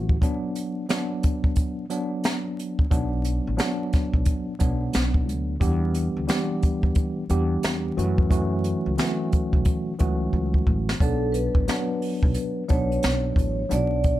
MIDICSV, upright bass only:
0, 0, Header, 1, 2, 480
1, 0, Start_track
1, 0, Tempo, 674157
1, 155, Time_signature, 4, 2, 24, 8
1, 10109, End_track
2, 0, Start_track
2, 0, Title_t, "Upright bass"
2, 0, Program_c, 0, 32
2, 0, Note_on_c, 0, 33, 99
2, 119, Note_off_c, 0, 33, 0
2, 2076, Note_on_c, 0, 35, 107
2, 2401, Note_off_c, 0, 35, 0
2, 2473, Note_on_c, 0, 33, 90
2, 2545, Note_off_c, 0, 33, 0
2, 2948, Note_on_c, 0, 35, 90
2, 3021, Note_off_c, 0, 35, 0
2, 3286, Note_on_c, 0, 35, 101
2, 3481, Note_off_c, 0, 35, 0
2, 3523, Note_on_c, 0, 35, 92
2, 3762, Note_off_c, 0, 35, 0
2, 3762, Note_on_c, 0, 38, 85
2, 3959, Note_off_c, 0, 38, 0
2, 3997, Note_on_c, 0, 40, 103
2, 4322, Note_off_c, 0, 40, 0
2, 4390, Note_on_c, 0, 38, 92
2, 4463, Note_off_c, 0, 38, 0
2, 4867, Note_on_c, 0, 40, 90
2, 4941, Note_off_c, 0, 40, 0
2, 5200, Note_on_c, 0, 40, 97
2, 5398, Note_off_c, 0, 40, 0
2, 5440, Note_on_c, 0, 40, 94
2, 5638, Note_off_c, 0, 40, 0
2, 5680, Note_on_c, 0, 42, 106
2, 6204, Note_off_c, 0, 42, 0
2, 6309, Note_on_c, 0, 37, 89
2, 6382, Note_off_c, 0, 37, 0
2, 6787, Note_on_c, 0, 35, 93
2, 6861, Note_off_c, 0, 35, 0
2, 7126, Note_on_c, 0, 37, 93
2, 7321, Note_off_c, 0, 37, 0
2, 7357, Note_on_c, 0, 37, 92
2, 7557, Note_off_c, 0, 37, 0
2, 7598, Note_on_c, 0, 33, 99
2, 7797, Note_off_c, 0, 33, 0
2, 7837, Note_on_c, 0, 35, 106
2, 8162, Note_off_c, 0, 35, 0
2, 8225, Note_on_c, 0, 33, 95
2, 8300, Note_off_c, 0, 33, 0
2, 8708, Note_on_c, 0, 35, 97
2, 8782, Note_off_c, 0, 35, 0
2, 9047, Note_on_c, 0, 35, 101
2, 9242, Note_off_c, 0, 35, 0
2, 9282, Note_on_c, 0, 35, 95
2, 9479, Note_off_c, 0, 35, 0
2, 9515, Note_on_c, 0, 33, 97
2, 9715, Note_off_c, 0, 33, 0
2, 9761, Note_on_c, 0, 35, 107
2, 10084, Note_off_c, 0, 35, 0
2, 10109, End_track
0, 0, End_of_file